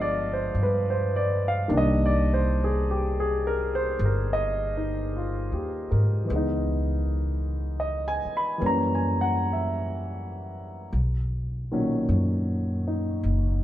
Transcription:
Already playing: upright bass G1, grand piano F3 G#3 B3 D4 D#5 F5
0.01 grand piano D5
0.33 grand piano C5
0.55 upright bass G2
0.63 grand piano B4
0.90 grand piano C5
1.16 grand piano D5
1.48 grand piano F5
1.68 upright bass C2, grand piano D#3 G3 A#3 D4
1.77 grand piano D#5
2.06 grand piano D5
2.34 grand piano C5
2.64 grand piano G#4
2.91 grand piano G4
3.20 grand piano G#4
3.47 grand piano A#4
3.75 grand piano C5
3.99 upright bass G1
4.05 grand piano A#4
4.33 grand piano D#5
4.77 grand piano D#4
5.16 grand piano F4
5.52 upright bass D#2, grand piano G4
5.91 upright bass G#2, grand piano A#4
6.25 grand piano E3 G#3
6.30 upright bass C#2, grand piano B3
6.36 grand piano D#4
7.80 grand piano D#5
8.08 grand piano G#5
8.25 muted upright bass stroke
8.37 grand piano B5
8.58 upright bass F#2, grand piano E3 G3 A#3
8.63 grand piano C#4 A#5
8.95 grand piano G#5
9.21 grand piano F#5
9.53 grand piano E5
10.93 upright bass B1
11.71 grand piano A#2 D#3 F#3 C#4
12.09 upright bass F#2
12.88 grand piano D#4
13.23 upright bass F#1

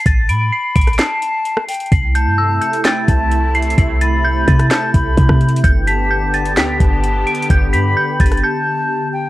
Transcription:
0.06 808-style bass A1, synth bell A6, kick, closed hi-hat
0.29 808-style bass A2, flute B5, synth bell D7, closed hi-hat
0.52 synth bell C7
0.75 808-style bass A1, synth bell D7, kick, closed hi-hat
0.81 closed hi-hat
0.87 cross-stick, closed hi-hat
0.93 closed hi-hat
0.99 flute A5, synth bell C7, snare, clap, closed hi-hat
1.22 closed hi-hat
1.45 closed hi-hat
1.57 cross-stick
1.68 flute G5, closed hi-hat, open hi-hat
1.74 closed hi-hat
1.80 closed hi-hat
1.86 closed hi-hat
1.92 808-style bass C2, analog synth pad C3 A3 E4, synth bell C7, kick, closed hi-hat
2.15 flute A5, synth bell G6, closed hi-hat
2.27 808-style bass G2
2.38 synth bell E6
2.61 synth bell G6, closed hi-hat
2.73 closed hi-hat
2.85 flute G5, synth bell A6, snare, clap, closed hi-hat
3.08 808-style bass C2, flute A5, kick, closed hi-hat
3.31 closed hi-hat
3.55 synth bell C7, closed hi-hat
3.62 closed hi-hat
3.70 closed hi-hat
3.78 808-style bass C2, synth bell C7, kick, closed hi-hat
4.01 flute B5, synth bell A6, closed hi-hat
4.24 synth bell G6
4.47 808-style bass C3, synth bell A6, kick, closed hi-hat
4.59 cross-stick, closed hi-hat
4.71 flute A5, synth bell G6, snare, clap, closed hi-hat
4.94 808-style bass C2, flute B5, kick, closed hi-hat
5.17 808-style bass C3, kick, closed hi-hat
5.29 808-style bass C3, kick, cross-stick
5.41 closed hi-hat
5.49 closed hi-hat
5.56 closed hi-hat
5.64 808-style bass G1, analog synth pad D3 B3 G4, synth bell G6, kick, closed hi-hat
5.87 flute A5, synth bell B6, closed hi-hat
6.11 synth bell G6
6.34 synth bell A6, closed hi-hat
6.45 closed hi-hat
6.57 808-style bass D2, flute G5, synth bell B6, snare, clap, closed hi-hat
6.80 808-style bass G1, flute A5, kick, closed hi-hat
7.04 closed hi-hat
7.27 synth bell D7, closed hi-hat
7.35 closed hi-hat
7.42 closed hi-hat
7.50 808-style bass G1, synth bell G6, kick, closed hi-hat
7.73 808-style bass G2, flute B5, synth bell B6, closed hi-hat
7.97 synth bell G6
8.20 808-style bass G1, synth bell A6, kick, closed hi-hat
8.26 closed hi-hat
8.32 cross-stick, closed hi-hat
8.37 closed hi-hat
8.43 flute A5, synth bell G6
9.13 flute G5

